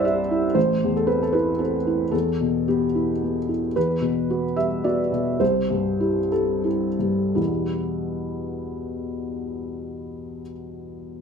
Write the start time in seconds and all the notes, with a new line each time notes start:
Already playing: C2 G2 C4 E4 C5 D5 E5 F#5
0.05 G4 E5
0.31 E4
0.55 A1 C5
0.84 E2
0.97 A4
1.07 C4 B4
1.23 A4
1.33 E4 B4
1.59 C4 A4
1.87 E4
2.11 E2 A4
2.41 B2
2.68 B3 G4
2.95 E4
3.23 B3
3.49 E4
3.76 E2 B4
4.01 B2
4.30 B3 F#4
4.56 G3 E5
4.84 B3 F#4 D5
5.12 B2
5.40 C2 C5
5.71 G2
6.00 E4 G4
6.32 G3 A4
6.64 E4 G4
6.99 G2
7.35 E2 B2 G3 B3 E4